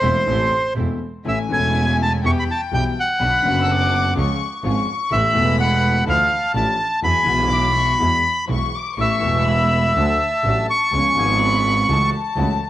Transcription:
Already playing: bandoneon C5
0.02 double bass E1, grand piano E1 E2 E3 A3 C4 A4, string section A3 C4 E4, violin section C6
0.26 double bass A1, grand piano A1 A2 E3 A3 C4 A4, string section A3 C4 E4
0.75 double bass E1, grand piano E1 E2 E3 A3 C4 A4, string section A3 C4 E4
1.25 grand piano A1 A2 E3 A3 C#4 A4, double bass A1, string section A3 C#4 E4, bandoneon E5, violin section G#5
1.48 double bass E1, grand piano E1 E2 E3 A3 C#4, string section A3 C#4 E4
1.52 grand piano A4, bandoneon G#5
2.02 bandoneon A5
2.23 grand piano E2 E3 G3 B3 G4, double bass E2, string section B3 E4 G4, violin section G5, bandoneon C#6
2.39 bandoneon B5
2.51 bandoneon A5
2.72 grand piano B1 B2 E3 G3 B3 G4, double bass B1, string section B3 E4 G4, bandoneon G5
3.00 bandoneon F#5
3.20 grand piano B1 B2 D3 F#3 B3 F#4, double bass B1, string section B3 D4 F#4, violin section B5
3.42 double bass F#1, grand piano F#1 F#2 D3 F#3 B3 F#4, string section B3 D4 F#4
3.62 violin section E6
3.69 violin section D6
4.16 grand piano C#2 C#3 F3 G#3 C#4 G#4, double bass C#2, string section G#3 C#4 F4, violin section C#6
4.63 grand piano G#1 G#2 F3 G#3 C#4 G#4, double bass G#1, string section G#3 C#4 F4, violin section C#6
5.11 grand piano A1 A2 E3 A3 B3 A4, double bass A1, string section A3 B3 E4, bandoneon E5, violin section B5
5.32 grand piano E1 E2 E3 A3 B3 A4, double bass E1, string section A3 B3 E4
5.61 bandoneon F#5
6.07 grand piano D2 D3 E3 A3 D4 F4, double bass D2, string section F3 D4 E4, bandoneon F5, violin section A5
6.54 grand piano A1 A2 E3 A3 D4 F4, double bass A1, string section F3 D4 E4, bandoneon A5
7.02 grand piano E2 E3 G#3 B3 F#4, double bass E2, string section F#3 G#3 E4, violin section G#5, bandoneon B5
7.25 grand piano B1 B2 E3 G#3 B3 F#4, double bass B1, string section F#3 G#3 E4
7.51 violin section D6
7.75 violin section C#6
7.99 grand piano E2 E3 G#3 B3 F#4, double bass E2, string section F#3 G#3 E4, violin section B5
8.48 grand piano B1 B2 E3 G#3 B3 F#4, double bass B1, string section F#3 G#3 E4, violin section C#6
8.76 violin section D6
8.97 grand piano A1 A2 E3 A3 B3 A4, double bass A1, string section A3 B3 E4, bandoneon E5, violin section C#6
9.20 grand piano E1 E2 E3 A3 B3, double bass E1, string section A3 B3 E4
9.24 grand piano A4
9.47 violin section B5
9.95 double bass D2, grand piano D2 D3 F#3 A3 D4 A4, string section A3 D4 F#4, violin section A5
10.44 double bass A1, grand piano A1 A2 F#3 A3 D4 A4, string section A3 D4 F#4
10.70 bandoneon C#6
10.92 double bass C#2, grand piano C#2 C#3 F3 B3 C#4 G#4, string section B3 C#4 F4, violin section G#5
11.15 double bass G#1, grand piano G#1 G#2 F3 B3 C#4, string section B3 C#4 F4
11.20 grand piano G#4
11.41 violin section B5
11.88 double bass C#2, grand piano C#2 C#3 E3 A3 C#4 F#4, string section A3 E4 F#4, violin section A5
12.36 double bass C#2, grand piano C#2 C#3 E3 A3 C#4 F#4, string section A3 E4 F#4

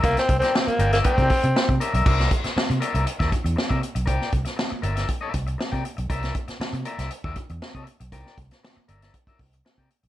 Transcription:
0.03 fingered electric bass C2, tenor saxophone A#3, clean electric guitar A#4 D5 E5, kick, closed hi-hat
0.17 tenor saxophone C4, snare, closed hi-hat
0.29 fingered electric bass C2, muted clean electric guitar stroke, kick, closed hi-hat
0.39 tenor saxophone C4, clean electric guitar D5 G5, snare, closed hi-hat
0.43 clean electric guitar A#4
0.54 muted clean electric guitar stroke, snare
0.61 tenor saxophone C4
0.67 tenor saxophone A#3, muted fingered electric bass stroke, muted clean electric guitar stroke, closed hi-hat
0.79 fingered electric bass G1, clean electric guitar A#4 D5 G5, closed hi-hat
0.93 tenor saxophone A#3, clean electric guitar A#4 D5 E5, snare, closed hi-hat
1.04 tenor saxophone C4, clean electric guitar A#4 D5 G5, kick, closed hi-hat
1.18 fingered electric bass C3, kick, closed hi-hat
1.29 muted clean electric guitar stroke, kick, open hi-hat
1.44 fingered electric bass C3, muted clean electric guitar stroke, closed hi-hat
1.56 muted clean electric guitar stroke, snare
1.69 fingered electric bass C3, muted clean electric guitar stroke, kick, closed hi-hat
1.80 clean electric guitar A#4 D5 E5, closed hi-hat
1.94 fingered electric bass B1, clean electric guitar A#4 D5 E5, closed hi-hat
2.06 fingered electric bass C2, clean electric guitar A#4 D5 E5, kick, crash
2.19 snare, closed hi-hat
2.31 kick, closed hi-hat
2.44 muted clean electric guitar stroke, muted fingered electric bass stroke, snare, closed hi-hat
2.56 muted fingered electric bass stroke, muted clean electric guitar stroke, snare
2.70 fingered electric bass C3, muted clean electric guitar stroke, closed hi-hat
2.80 clean electric guitar A#4 D5 E5, closed hi-hat
2.94 fingered electric bass C2, clean electric guitar A#4 D5 E5, closed hi-hat
3.06 muted clean electric guitar stroke, closed hi-hat
3.19 fingered electric bass D#2, clean electric guitar A#4 D5 E5, kick, snare, closed hi-hat
3.31 muted clean electric guitar stroke, kick, closed hi-hat
3.44 fingered electric bass E2, muted clean electric guitar stroke, closed hi-hat
3.56 muted clean electric guitar stroke, snare
3.69 fingered electric bass C3, clean electric guitar A#4 D5 E5, kick, closed hi-hat
3.81 muted clean electric guitar stroke, closed hi-hat
3.95 fingered electric bass B1, muted clean electric guitar stroke, closed hi-hat
4.06 fingered electric bass C2, clean electric guitar A#4 D5 G5, kick, closed hi-hat
4.21 snare
4.32 fingered electric bass C2, kick, closed hi-hat
4.45 muted clean electric guitar stroke, snare, closed hi-hat
4.56 muted clean electric guitar stroke, snare
4.70 muted clean electric guitar stroke, muted fingered electric bass stroke
4.82 fingered electric bass G1, clean electric guitar A#4 D5 E5, closed hi-hat
4.96 clean electric guitar A#4 D5 E5, snare, closed hi-hat
5.08 muted clean electric guitar stroke, kick, closed hi-hat
5.21 clean electric guitar A#4 D5 E5
5.33 fingered electric bass C2, muted clean electric guitar stroke, kick, closed hi-hat
5.47 muted clean electric guitar stroke, closed hi-hat
5.58 muted clean electric guitar stroke, snare
5.72 fingered electric bass C3, clean electric guitar A#4 D5 G5, kick, closed hi-hat
5.84 muted clean electric guitar stroke, closed hi-hat
5.97 fingered electric bass B1, muted clean electric guitar stroke, closed hi-hat
6.10 fingered electric bass C2, clean electric guitar A#4 D5 E5, kick, closed hi-hat
6.23 snare, closed hi-hat
6.35 kick, closed hi-hat
6.48 muted clean electric guitar stroke, muted fingered electric bass stroke, snare, closed hi-hat
6.60 muted fingered electric bass stroke, muted clean electric guitar stroke, snare
6.73 fingered electric bass C3, muted clean electric guitar stroke, closed hi-hat
6.85 clean electric guitar A#4 D5 E5, closed hi-hat
6.99 fingered electric bass C2, clean electric guitar A#4 D5 E5, snare, closed hi-hat
7.11 muted clean electric guitar stroke, closed hi-hat
7.24 fingered electric bass D#2, clean electric guitar A#4 D5 E5, kick
7.36 muted clean electric guitar stroke, kick, closed hi-hat
7.49 fingered electric bass E2, muted clean electric guitar stroke, closed hi-hat
7.62 muted clean electric guitar stroke, snare
7.75 fingered electric bass C3, clean electric guitar A#4 D5 E5, kick, closed hi-hat
7.86 muted clean electric guitar stroke, closed hi-hat
8.00 fingered electric bass B1, muted clean electric guitar stroke, closed hi-hat
8.12 fingered electric bass C2, clean electric guitar A#4 D5 G5, kick, closed hi-hat
8.26 snare
8.38 fingered electric bass C2, kick, closed hi-hat
8.51 muted clean electric guitar stroke, snare, closed hi-hat
8.63 muted clean electric guitar stroke, snare
8.76 muted clean electric guitar stroke, muted fingered electric bass stroke
8.88 fingered electric bass G1, clean electric guitar A#4 D5 E5, closed hi-hat
9.02 clean electric guitar A#4 D5 E5, snare, closed hi-hat
9.14 muted clean electric guitar stroke, kick, closed hi-hat
9.27 clean electric guitar A#4 D5 E5, kick, closed hi-hat
9.39 fingered electric bass C2, muted clean electric guitar stroke, kick, open hi-hat
9.53 muted clean electric guitar stroke, closed hi-hat
9.65 muted clean electric guitar stroke, snare
9.78 fingered electric bass C3, clean electric guitar A#4 D5 G5, kick, closed hi-hat
9.90 muted clean electric guitar stroke, closed hi-hat
10.03 fingered electric bass B1, muted clean electric guitar stroke, closed hi-hat

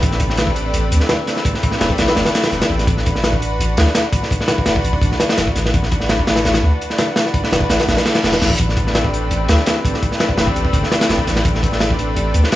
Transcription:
0.02 808-style bass A1, analog synth pad A3 C4 D4 G4 B4, kick, closed hi-hat
0.12 snare
0.20 kick, closed hi-hat
0.30 snare
0.37 snare, closed hi-hat
0.47 kick
0.56 closed hi-hat
0.73 808-style bass A1, closed hi-hat
0.91 808-style bass D2, closed hi-hat
1.00 snare
1.09 snare, closed hi-hat
1.27 analog synth pad A3 C4 D4 G4 B4, snare, closed hi-hat
1.37 snare
1.45 analog synth pad A3 C4 D4 G4 B4, kick, closed hi-hat
1.54 snare
1.63 kick, closed hi-hat
1.71 snare
1.81 808-style bass E1, snare, closed hi-hat
1.90 kick
1.98 808-style bass A1, snare, closed hi-hat
2.08 snare, closed hi-hat
2.16 808-style bass G1, snare, closed hi-hat
2.25 snare, closed hi-hat
2.35 snare, closed hi-hat
2.43 snare, closed hi-hat
2.52 808-style bass E1, analog synth pad A3 C4 D4 G4 B4, snare, closed hi-hat
2.61 snare, closed hi-hat
2.70 808-style bass A1
2.79 snare, closed hi-hat
2.87 808-style bass A1, analog synth pad D4 F#4 B4, kick, closed hi-hat
2.97 snare
3.06 kick, closed hi-hat
3.16 snare
3.24 snare, closed hi-hat
3.33 kick
3.42 closed hi-hat
3.60 808-style bass A1, closed hi-hat
3.77 808-style bass D2, snare, closed hi-hat
3.87 snare
3.95 snare, closed hi-hat
4.13 analog synth pad D4 F#4 B4, kick, closed hi-hat
4.23 snare
4.31 analog synth pad D4 F#4 B4, kick, closed hi-hat
4.41 snare
4.48 snare, closed hi-hat
4.58 kick
4.66 808-style bass E1, snare, closed hi-hat
4.76 kick
4.84 808-style bass A1, closed hi-hat
4.93 kick
5.02 808-style bass A1, kick, closed hi-hat
5.12 snare
5.20 snare, closed hi-hat
5.29 snare, closed hi-hat
5.38 808-style bass E1, analog synth pad D4 F#4 B4, snare, closed hi-hat
5.48 kick
5.55 808-style bass A1, snare, closed hi-hat
5.66 snare
5.74 808-style bass A1, analog synth pad D4 F#4 B4, kick, closed hi-hat
5.83 snare
5.91 kick, closed hi-hat
6.00 snare
6.09 snare, closed hi-hat
6.19 kick
6.27 snare, closed hi-hat
6.36 snare, closed hi-hat
6.45 808-style bass A1, snare, closed hi-hat
6.54 snare, closed hi-hat
6.63 808-style bass D2
6.81 closed hi-hat
6.90 snare
6.98 analog synth pad D4 F#4 B4, snare, closed hi-hat
7.16 analog synth pad D4 F#4 B4, snare, closed hi-hat
7.26 snare
7.34 kick, closed hi-hat
7.44 snare
7.52 808-style bass E1, snare, closed hi-hat
7.60 kick
7.70 808-style bass A1, snare, closed hi-hat
7.79 snare, closed hi-hat
7.88 808-style bass A1, snare, closed hi-hat, reverse cymbal
7.97 snare, closed hi-hat
8.05 snare, closed hi-hat
8.15 snare, closed hi-hat
8.24 808-style bass E1, analog synth pad D4 F#4 B4, snare, closed hi-hat
8.32 snare, closed hi-hat
8.42 808-style bass A1, snare, closed hi-hat
8.50 kick
8.59 808-style bass A1, analog synth pad A3 C4 D4 G4 B4, kick, closed hi-hat
8.69 snare
8.77 kick, closed hi-hat
8.87 snare
8.95 snare, closed hi-hat
9.04 kick
9.14 closed hi-hat
9.31 808-style bass A1, closed hi-hat
9.48 808-style bass D2, snare, closed hi-hat
9.58 snare
9.66 snare, closed hi-hat
9.84 analog synth pad A3 C4 D4 G4 B4, kick, closed hi-hat
9.94 snare
10.02 analog synth pad A3 C4 D4 G4 B4, kick, closed hi-hat
10.12 snare
10.20 snare, closed hi-hat
10.29 kick
10.38 808-style bass E1, snare, closed hi-hat
10.47 kick
10.56 808-style bass A1, closed hi-hat
10.65 kick
10.73 808-style bass G1, kick, closed hi-hat
10.84 snare
10.92 snare, closed hi-hat
11.01 snare, closed hi-hat
11.09 808-style bass E1, analog synth pad A3 C4 D4 G4 B4, snare, closed hi-hat
11.18 kick
11.27 808-style bass A1, snare, closed hi-hat
11.36 snare
11.45 808-style bass A1, analog synth pad A3 C4 D4 G4 B4, kick, closed hi-hat
11.55 snare
11.63 kick, closed hi-hat
11.72 snare
11.80 snare, closed hi-hat
11.90 kick
11.99 closed hi-hat
12.16 808-style bass A1, closed hi-hat
12.34 808-style bass D2, closed hi-hat
12.44 snare
12.52 snare, closed hi-hat

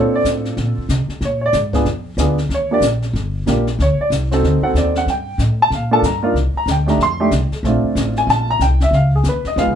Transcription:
Already playing: upright bass A#2, upright piano C4 D4 F4 A4 C#5
0.15 upright piano D5
0.24 upright bass A2, snare, hi-hat pedal
0.45 snare
0.57 upright bass A#2, brush sweep, snare
0.77 muted upright bass stroke
0.89 upright bass C3, snare, hi-hat pedal
1.08 muted upright bass stroke, snare
1.21 upright bass A#2, brush sweep, snare
1.25 upright piano C#5
1.46 upright piano D5
1.53 upright bass G#2, snare, hi-hat pedal
1.73 upright piano B3 D4 F4 G#4, kick, snare
1.85 upright bass F2, brush sweep, snare
2.17 upright bass D2, upright piano B3 D4 F4 G#4, snare, hi-hat pedal
2.38 snare
2.49 upright bass D#2, brush sweep, snare
2.54 upright piano C#5
2.71 upright piano A#3 D4 F4 G4 D5
2.81 upright bass A#1, snare, hi-hat pedal
3.02 snare
3.13 upright bass G1, brush sweep, snare
3.46 upright bass A#1, upright piano A#3 D4 F4 G4, snare, hi-hat pedal
3.67 snare
3.79 upright bass D2, upright piano C#5, brush sweep, snare
3.98 upright piano D5, muted upright bass stroke
4.10 upright bass C2, snare, hi-hat pedal
4.31 upright piano C4 D#4 F#4 A4, snare
4.43 upright bass D2, brush sweep, snare
4.61 upright piano C4 D#4 F#4 A4 F#5, muted upright bass stroke
4.73 upright bass D#2, upright piano D5, snare, hi-hat pedal
4.95 upright piano F#5, snare
5.06 upright bass G2, upright piano G5, brush sweep, snare
5.38 upright bass A2, snare, hi-hat pedal
5.62 upright piano A5
5.70 upright bass A#2, brush sweep, snare
5.75 upright piano F5
5.91 upright piano A#3 D4 F4 A4 A5
6.02 upright bass G2, upright piano A#5, snare, hi-hat pedal
6.23 upright piano A#3 D4 D#4 F4
6.34 upright bass C2, brush sweep, snare
6.54 upright piano A#5, muted upright bass stroke
6.66 upright bass D2, snare, hi-hat pedal
6.71 upright piano G5
6.86 upright piano A3 D4 D#4 G4 A#5, snare
6.98 upright bass F2, brush sweep, snare
7.03 upright piano C6
7.20 upright piano A3 D4 D#4 G4
7.31 upright bass C2, snare, hi-hat pedal
7.51 muted upright bass stroke, snare
7.63 upright bass A#1, upright piano A3 C4 D4 F4, brush sweep, snare
7.83 muted upright bass stroke
7.95 upright bass A1, snare, hi-hat pedal
8.16 upright piano G#5, snare
8.27 upright bass A#1, upright piano A5, brush sweep, snare
8.51 upright piano A#5
8.59 upright bass C2, upright piano G5, snare, hi-hat pedal
8.80 upright piano E5, snare
8.91 upright bass C#2, upright piano F5, brush sweep, snare
9.15 upright piano G#4
9.24 upright bass D#2, snare, hi-hat pedal
9.29 upright piano B4
9.44 upright piano D#5, muted upright bass stroke, snare
9.56 upright bass F2, upright piano G#3 B3 D#4 F4 F5, brush sweep, snare
9.66 upright bass C#2

